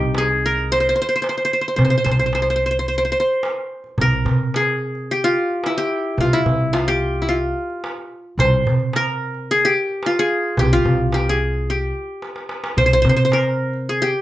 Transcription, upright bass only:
Already playing: C2
1.78 C3
2.06 C2
3.98 C2
4.25 C3
6.18 C2
6.46 C2
8.38 C2
8.65 C3
10.58 C2
10.85 C2
12.77 C2
13.05 C3

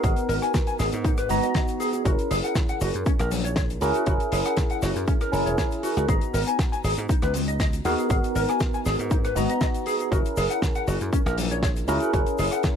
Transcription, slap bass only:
0.04 G#1
0.29 G#1
0.79 G#1
0.93 G#2
1.30 G#1
2.05 F#1
2.31 F#1
2.81 F#1
2.95 F#2
3.06 muted slap bass stroke
3.20 A#1
3.82 C#2
4.07 F#1
4.32 F#1
4.82 F#1
4.96 F#2
5.33 F#1
5.46 E1
5.97 C#2
6.08 G#1
6.34 G#1
6.84 G#1
6.98 G#2
7.09 muted slap bass stroke
7.23 C#2
7.85 D#2
8.10 G#1
8.35 G#1
8.86 G#1
8.99 G#2
9.36 G#1
10.12 F#1
10.37 F#1
10.87 F#1
11.01 F#2
11.13 muted slap bass stroke
11.26 A#1
11.88 C#2
12.14 F#1
12.39 F#1

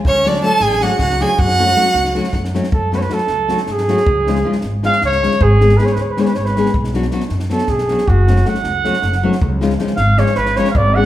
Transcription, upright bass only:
0.06 D2
0.61 A1
0.99 C#2
1.39 F#2
1.94 C#2
2.34 F#2
2.72 F#2
3.29 C#2
3.68 G#2
4.08 C#2
4.63 G#1
5.02 C#2
5.41 G#1
5.96 D2
6.36 G#1
6.75 B1
7.30 F#2
7.70 B1
8.09 F#1
8.64 C#2
9.03 F#1
9.42 C#2
9.98 G#1
10.37 A1
10.76 G#1

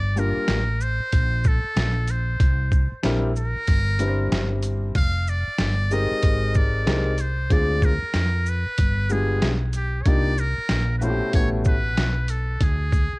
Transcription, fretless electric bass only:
Already playing: G1
0.48 A1
1.00 muted fretless electric bass stroke
1.13 A#1
1.64 muted fretless electric bass stroke
1.76 A#1
2.40 C2
2.92 muted fretless electric bass stroke
3.04 A#1
3.56 muted fretless electric bass stroke
3.68 G1
4.31 G1
4.95 F1
5.47 muted fretless electric bass stroke
5.59 G1
6.11 muted fretless electric bass stroke
6.23 G#1
6.87 C2
7.51 D2
8.02 muted fretless electric bass stroke
8.14 F2
8.66 muted fretless electric bass stroke
8.79 G1
9.42 B1
10.06 C2
10.58 muted fretless electric bass stroke
10.70 A#1
11.22 muted fretless electric bass stroke
11.34 A1
11.98 B1
12.61 D2
13.13 muted fretless electric bass stroke

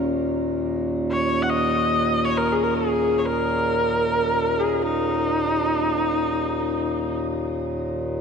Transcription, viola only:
1.11 C#5
1.42 F#5
1.50 D#5
2.25 C#5
2.37 A#4
2.52 G#4
2.63 A#4
2.74 G#4
3.18 C#5
3.25 A#4
4.59 G#4
4.83 D#4

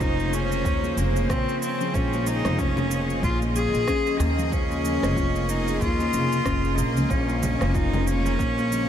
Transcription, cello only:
0.01 D#4
0.33 C#4
0.98 A#3
1.30 C4
1.62 C4
1.94 C#4
2.27 D#4
2.59 C#4
3.24 F4
3.56 G#4
4.20 A#3
4.53 C#4
5.50 D#4
5.81 F4
6.78 A#3
7.10 C#4
7.75 D#4
8.07 C#4

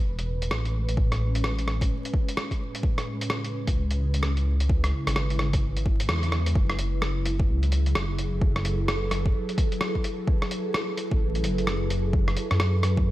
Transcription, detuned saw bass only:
0.04 E1
0.51 A1
0.88 A1
0.97 A1
3.67 C#2
4.00 C#2
5.07 G#1
6.09 E2
6.32 E2
6.55 F#1
7.48 C#2
7.95 F#1
8.33 F#1
8.42 F#1
11.12 A1
11.43 F#1
12.51 F#2

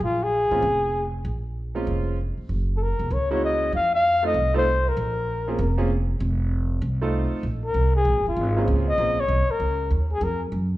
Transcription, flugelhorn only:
0.04 F4
0.23 G#4
2.77 A4
2.82 A#4
3.13 C#5
3.32 C#5
3.44 D#5
3.75 F5
3.94 F5
4.26 D#5
4.57 C5
4.88 A#4
7.66 A#4
7.96 G#4
8.28 F4
8.89 D#5
9.20 C#5
9.51 A#4
10.12 G#4
10.24 A#4

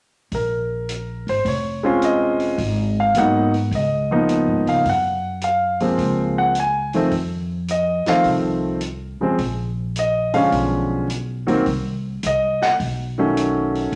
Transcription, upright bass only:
0.32 A#1
1.27 G#1
1.45 F1
2.58 G#1
3.15 G#2
3.71 C#2
4.47 G#2
4.66 C#3
4.85 F#2
5.98 C#2
7.11 F2
8.07 muted upright bass stroke
8.24 C2
9.20 muted upright bass stroke
9.38 A#1
10.52 B1
11.66 C2
12.23 C2
12.80 B1
13.92 A#1

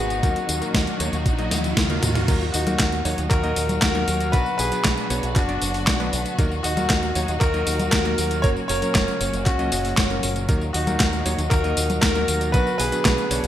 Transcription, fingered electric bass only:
Already playing: G#1
0.23 D#2
0.49 D#2
0.74 D#2
1.00 D#2
1.13 D#2
1.26 A#1
1.51 D#2
1.77 D#2
2.03 D#2
2.28 D#2
2.54 D#2
2.79 D#2
3.05 D#2
3.18 D#2
3.31 D#2
3.57 D#2
3.82 D#2
4.08 D#2
4.33 B1
4.59 B1
4.85 B1
5.10 B1
5.23 B1
5.36 F#1
5.62 F#1
5.87 B1
6.13 B1
6.39 D#2
6.64 D#2
6.90 D#2
7.15 D#2
7.28 D#2
7.41 D#2
7.67 D#2
7.92 D#2
8.18 D#2
8.44 F#1
8.69 F#1
8.95 F#1
9.21 F#1
9.33 F#1
9.46 C#2
9.72 F#1
9.98 F#1
10.23 F#1
10.49 D#2
10.74 D#2
11.00 D#2
11.26 D#2
11.38 D#2
11.51 D#2
11.77 D#2
12.03 D#2
12.28 D#2
12.54 B1
12.79 B1
13.05 B1
13.31 B1
13.43 B1

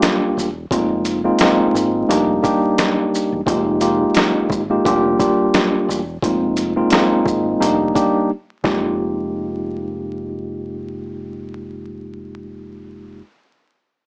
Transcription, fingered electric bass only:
0.37 E1
0.71 F1
1.75 G#1
2.09 F1
3.32 E1
3.47 F1
4.50 G#1
4.86 F1
5.89 E1
6.23 F1
7.26 G#1
7.61 F1
8.64 F1

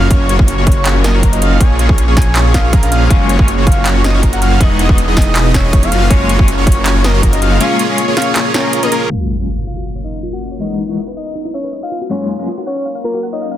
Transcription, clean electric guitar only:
3.09 G#3 A#3 C#4 F4
3.38 G#3 A#3 C#4 F4
4.59 G#3 B3 D#4 F#4
4.88 G#3 B3 D#4 F#4
6.10 G#3 A#3 C#4 F4
6.38 G#3 A#3 C#4 F4
7.60 G#3 A#3 C#4 F4
7.88 G#3 A#3 C#4 F4
9.09 F#2 G#3 A#3 C#4 F4
9.38 F#2 G#3 A#3 C#4 F4
10.59 E2 G#3 B3 D#4 F#4
10.88 E2 G#3 B3 D#4 F#4
12.09 F#2 G#3 A#3 C#4 F4
12.38 F#2 G#3 A#3 C#4 F4

